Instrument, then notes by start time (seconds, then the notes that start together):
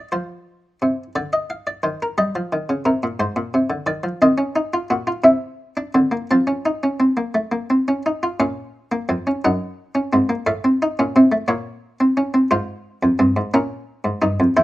harpsichord
Already playing: D5
0.12 F3 C5
0.82 C3
1.16 D3 D5
1.33 D#5
1.50 F5
1.67 D5
1.83 D#3 C5
2.02 A#4
2.18 G3 D#5
2.35 F3
2.53 D#3
2.69 C#3
2.85 C3 A#4
3.03 A#2
3.20 G#2 C5
3.36 A#2
3.54 C3
3.70 D3
3.87 D#3 D5
4.04 F3
4.22 D#3 C4 D#5
4.38 C#4
4.56 D#4
4.74 F4
4.90 A#2 F#4
5.07 F4
5.24 C3 E4 E5
5.77 D4
5.95 D3 C4
6.11 A#3
6.31 F3 C4 A5
6.47 C#4
6.66 D#4
6.83 C#4
7.00 C4
7.17 A#3
7.34 A3
7.52 A#3
7.70 C4
7.88 C#4
8.06 D#4
8.23 F4
8.40 A#2 C#4 F5
8.92 A#3
9.09 F2 C4
9.27 C#4
9.45 F#2 D#4 F#5
9.95 C#4
10.13 G#2 C4
10.29 A#3
10.47 A2 A3 F5
10.64 C4
10.82 D#4
10.99 A#2 C#4
11.16 C3 C4
11.32 A3
11.48 A#2 A#3 C#5
12.00 C4
12.17 C#4
12.34 C4
12.51 G#2 F4 C5
13.03 F2
13.19 G2 C4
13.37 G#2
13.54 A#2 C#4 A#4
14.04 G#2
14.22 G2 D#4
14.40 F2
14.57 E2 E4 C5